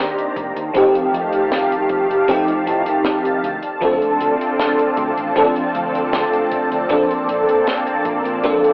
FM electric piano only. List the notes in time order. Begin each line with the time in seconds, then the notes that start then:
Already playing: D#3 A#3 C4 D4 G4
0.73 F3 A3 C4 D#4 G4
2.28 F3 A3 C4 D#4 G4
3.81 F3 A3 C4 D4 A4
5.36 F3 A3 C4 D4 A4
6.89 F3 A#3 C4 D4 A4
8.44 F3 A#3 C4 D4 A4